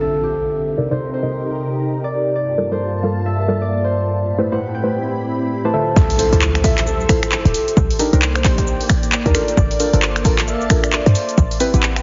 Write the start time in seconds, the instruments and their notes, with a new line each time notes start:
Already playing: string machine D3 C4 F4 A4 E5, synth stab D3 F4 E5, harp G4, impact
0.01 harp A4
0.23 harp G4
0.55 string machine C3 D#4 G4 A#4
0.77 synth stab C3 D#4 G4 A#4 D5
0.91 synth stab C3 D#4 G4 A#4 D5, harp C5
1.14 harp C5
1.23 synth stab C3 D#4 G4 A#4 D#5
2.04 harp D5
2.35 string machine G2 A#3 F4 A5, harp D5
2.58 synth stab G3 F4 A4 A#4 D5
2.72 synth stab G3 F4 A4 A#4 D5, harp C5
3.03 synth stab G3 F4 A4 A#4 F5
3.26 harp E5
3.48 synth stab G3 F4 A4 A#4 D5
3.62 harp D5
3.84 harp C5
4.16 string machine A2 C4 E4 G4 B5
4.38 synth stab A3 E4 G4 B4 C5
4.52 synth stab A3 E4 G4 B4 C5, harp F#5
4.75 harp G5
4.83 synth stab A3 E4 G4 B4 C5
5.65 synth stab A3 E4 G4 B4 C5, harp A5
5.74 synth stab D3 F4 A4 C5 E5
5.96 808-style bass D2, harp A4, string machine A4 C5 E5, kick, impact, shaker
6.10 open hi-hat, shaker
6.19 synth stab E4 F4 A4 C5, open hi-hat, shaker
6.32 808-style bass D2, synth stab E4 F4 A4 C5, harp G4, closed hi-hat, shaker
6.42 clap, shaker
6.55 finger snap, closed hi-hat, shaker
6.64 synth stab E4 F4 A4 E5, kick, open hi-hat, shaker
6.78 clap, closed hi-hat, shaker
6.86 harp A4, shaker
7.00 shaker
7.09 synth stab E4 F4 A4 C5, finger snap, kick, open hi-hat, shaker
7.23 808-style bass A1, harp A4, finger snap, closed hi-hat, shaker
7.32 clap, shaker
7.45 808-style bass D1, harp G4, closed hi-hat, shaker
7.54 open hi-hat, shaker
7.68 closed hi-hat, shaker
7.77 808-style bass C2, string machine A#3 D5 G5, kick, shaker
7.91 open hi-hat, shaker
7.99 synth stab D4 D#4 G4 A#4, open hi-hat, shaker
8.13 808-style bass C2, synth stab D4 D#4 G4 A#4, harp C5, closed hi-hat, shaker
8.22 clap, shaker
8.35 harp C5, finger snap, closed hi-hat, shaker
8.44 synth stab D4 D#4 G4 C5, kick, clap, open hi-hat, shaker
8.58 kick, closed hi-hat, shaker
8.67 shaker
8.81 open hi-hat, shaker
8.90 finger snap, kick, open hi-hat, shaker
9.03 closed hi-hat, shaker
9.12 clap, shaker
9.26 808-style bass D#2, synth stab D4 D#4 G4 A#4, harp D5, kick, closed hi-hat, shaker
9.35 synth stab D4 F4 A4 A#4, finger snap, open hi-hat, shaker
9.48 closed hi-hat, shaker
9.57 808-style bass G1, harp D5, string machine F5 A5, kick, shaker
9.71 open hi-hat, shaker
9.80 synth stab D4 F4 A4 A#4, open hi-hat, shaker
9.93 808-style bass G1, synth stab D4 F4 A4 A#4, harp C5, closed hi-hat, shaker
10.02 clap, shaker
10.16 finger snap, closed hi-hat, shaker
10.25 synth stab D4 F4 A4 A#4, kick, open hi-hat, shaker
10.39 clap, closed hi-hat, shaker
10.47 harp E5, shaker
10.61 shaker
10.70 synth stab D4 F4 A4 A#4, finger snap, kick, open hi-hat, shaker
10.84 808-style bass D2, harp D5, finger snap, closed hi-hat, shaker
10.93 clap, shaker
11.06 808-style bass G2, harp C5, closed hi-hat, shaker
11.15 open hi-hat, shaker
11.29 closed hi-hat, shaker
11.38 808-style bass A1, string machine C5 E5 G5 B5, kick, shaker
11.51 open hi-hat, shaker
11.60 synth stab C4 E4 G4 B4, open hi-hat, shaker
11.74 808-style bass A1, synth stab C4 E4 G4 B4, harp F#5, closed hi-hat, shaker
11.83 clap, shaker
11.96 harp G5, finger snap, closed hi-hat, shaker